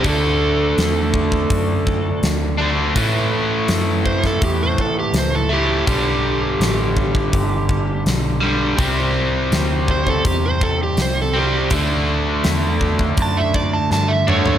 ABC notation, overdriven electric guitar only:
X:1
M:4/4
L:1/8
Q:1/4=82
K:D
V:1 name="Overdriven electric guitar" clef=bass
[D,A,D]6- [D,A,D] [D,A,D] | [A,,E,A,]6- [A,,E,A,] [A,,E,A,] | [G,,D,G,]6- [G,,D,G,] [G,,D,G,] | [=C,G,=C]6- [C,G,C] [C,G,C] |
[D,A,D]6- [D,A,D] [D,A,D] |]